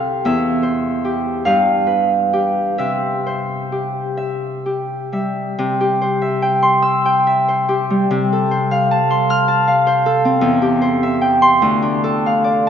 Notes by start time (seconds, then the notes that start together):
Already playing: C2 C3 A4 C5 F5
0.25 E2 E5
0.63 C5
1.05 G4
1.45 G2 F5
1.87 B4
2.33 G4
2.78 C3 E5
3.26 C5
3.72 G4
4.17 E5
4.66 G4
5.12 G3 E5
5.59 C3
5.81 G4
6.01 C5
6.22 E5
6.42 G5
6.63 C6
6.82 E6
7.05 G5
7.27 E5
7.48 C5
7.69 G4
7.90 G3
8.11 C3
8.33 A4
8.51 C5
8.71 F5
8.91 A5
9.10 C6
9.30 F6
9.48 A5
9.67 F5
9.87 C5
10.06 A4
10.25 C4
10.41 E2
10.62 G4
10.81 C5
11.03 E5
11.21 G5
11.42 C6
11.62 D2
11.82 D4
12.04 A4
12.26 F5
12.44 D5